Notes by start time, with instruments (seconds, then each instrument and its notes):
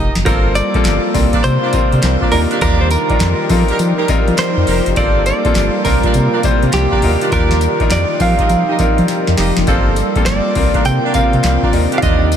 Already playing: analog synth bass F1, horn section D#4 G4 A#4 D#5
0.15 analog synth bass F#1, snare, closed hi-hat
0.26 analog synth bass G1, grand piano G3 A#3 C4 F4 A4, analog synth pad G3 A#3 F4, horn section C4 F4 A4 A#4 C5, clean electric guitar A#4, kick, closed hi-hat, tambourine
0.55 clean electric guitar D5, closed hi-hat, tambourine
0.74 grand piano G3 A#3 C4 F4 A4, kick, closed hi-hat
0.85 analog synth bass G1, snare, clap, closed hi-hat, tambourine
1.14 analog synth bass C2, analog synth pad C3 D5, grand piano G3 C4 D4 F4 A#4, kick, open hi-hat, tambourine
1.33 horn section D4 F4 A#4 D5, kick, closed hi-hat
1.44 analog synth bass C3, clean electric guitar C5, closed hi-hat, tambourine
1.62 horn section D4 F4 A#4 D5
1.73 analog synth bass C3, grand piano G3 C4 D4 F4 A#4, kick, closed hi-hat, tambourine
1.92 analog synth bass C3, closed hi-hat
2.02 analog synth bass C2, snare, clap, closed hi-hat, tambourine
2.21 horn section D4 F4 A#4 D5, kick
2.32 analog synth bass D#2, analog synth pad D#3 G4, grand piano G3 D4 D#4 F4 A#4, clean electric guitar A#4, open hi-hat
2.51 horn section D4 F4 G4 D5, closed hi-hat
2.61 analog synth bass D#2, horn section D4 F4 G4 D5, clean electric guitar A#4, kick, closed hi-hat, tambourine
2.81 clean electric guitar C5
2.91 clean electric guitar A#4, closed hi-hat, tambourine
3.10 grand piano G3 D4 D#4 F4 A#4, kick, closed hi-hat
3.20 analog synth bass F2, snare, clap, closed hi-hat, tambourine
3.49 analog synth pad F3 D#4 A#4, analog synth bass F3, grand piano G3 C4 D#4 F4 A4, kick, open hi-hat, tambourine
3.57 grand piano A#4
3.68 horn section A#3 D#4 G4 A#4, closed hi-hat
3.79 analog synth bass F3, closed hi-hat, tambourine
3.98 horn section A#3 D#4 G4 A#4
4.08 analog synth bass F3, grand piano G3 C4 D#4 F4 A#4, kick, closed hi-hat, tambourine
4.28 analog synth bass F3, closed hi-hat
4.38 clean electric guitar C5, snare, clap, closed hi-hat, tambourine
4.57 analog synth bass F2
4.67 analog synth bass F1, horn section A#3 D#4 G4 A#4, open hi-hat
4.86 analog synth bass F#1, closed hi-hat
4.96 analog synth bass G1, analog synth pad G3 A#3 F4, grand piano G3 A#3 C4 F4 A4, horn section C4 F4 A4 A#4 C5, clean electric guitar D5, kick, closed hi-hat, tambourine
5.26 clean electric guitar D5, closed hi-hat, tambourine
5.45 grand piano G3 A#3 C4 F4 A4, kick, closed hi-hat
5.55 analog synth bass G1, snare, clap, closed hi-hat, tambourine
5.84 analog synth bass C2, analog synth pad C3 D5, grand piano G3 C4 D4 F4 A#4, clean electric guitar A#4, kick, open hi-hat, tambourine
6.03 horn section D4 F4 A#4 D5, kick, closed hi-hat
6.14 analog synth bass C3, closed hi-hat, tambourine
6.33 horn section D4 F4 A#4 D5
6.43 analog synth bass C3, grand piano G3 C4 D4 E4 C5, kick, closed hi-hat, tambourine
6.51 grand piano F4
6.63 analog synth bass C3, closed hi-hat
6.73 analog synth bass C2, clean electric guitar G4, snare, clap, closed hi-hat, tambourine
6.91 horn section D4 F4 A#4 D5, kick
7.02 analog synth bass D#2, analog synth pad D#3 F4 G4, grand piano F#3 D4 D#4 F4 A#4, open hi-hat
7.09 grand piano G3
7.21 horn section D4 F4 G4 D5, closed hi-hat
7.31 analog synth bass D#2, horn section D4 F4 G4 D5, clean electric guitar A#4, kick, closed hi-hat, tambourine
7.51 snare
7.61 closed hi-hat, tambourine
7.80 grand piano G3 D4 D#4 F4 A#4, kick, closed hi-hat
7.90 analog synth bass F2, clean electric guitar D5, snare, clap, closed hi-hat, tambourine
8.20 analog synth bass F3, analog synth pad F3 D#4 A#4, grand piano G3 C4 D#4 F4 A#4, clean electric guitar F5, kick, open hi-hat, tambourine
8.39 horn section D#4 G4 A#4 D#5, kick, closed hi-hat
8.49 analog synth bass F3, closed hi-hat, tambourine
8.68 horn section D#4 G4 A#4 D#5
8.79 analog synth bass F3, grand piano G3 C4 D#4 F4 A#4, kick, closed hi-hat, tambourine
8.98 analog synth bass F3, closed hi-hat
9.08 snare, closed hi-hat
9.27 analog synth bass F2, snare
9.37 analog synth bass F1, horn section D#4 G4 A#4 D#5, snare, open hi-hat
9.57 analog synth bass F#1, snare, closed hi-hat
9.67 analog synth bass G1, grand piano G3 A#3 C4 F4 A4, analog synth pad G3 A#3 F4, horn section C4 F4 A4 A#4 C5, kick, closed hi-hat, tambourine
9.96 closed hi-hat, tambourine
10.15 grand piano G3 A#3 C4 F4 A4, kick, closed hi-hat
10.26 analog synth bass G1, clean electric guitar D5, snare, clap, closed hi-hat, tambourine
10.55 analog synth bass C2, analog synth pad C3 A#3 C4, grand piano G3 C4 D4 F4 A#4, kick, open hi-hat, tambourine
10.74 horn section D4 F4 A#4 D5, kick, closed hi-hat
10.85 analog synth bass C3, clean electric guitar G5, closed hi-hat, tambourine
11.04 horn section D4 F4 A#4 D5
11.14 analog synth bass C3, grand piano G3 C4 D4 F4 A#4, clean electric guitar F5, kick, closed hi-hat, tambourine
11.33 analog synth bass C3, closed hi-hat
11.43 analog synth bass C2, snare, clap, closed hi-hat, tambourine
11.62 horn section D4 F4 A#4 D5, kick
11.73 analog synth bass D#2, analog synth pad D#3 G4, grand piano G3 D4 D#4 F4 A#4, open hi-hat
11.92 horn section D4 F4 G4 D5, closed hi-hat
11.98 horn section F4, clean electric guitar F5
12.02 analog synth bass D#2, horn section D4 G4 D5, clean electric guitar D#5, kick, closed hi-hat, tambourine
12.32 closed hi-hat, tambourine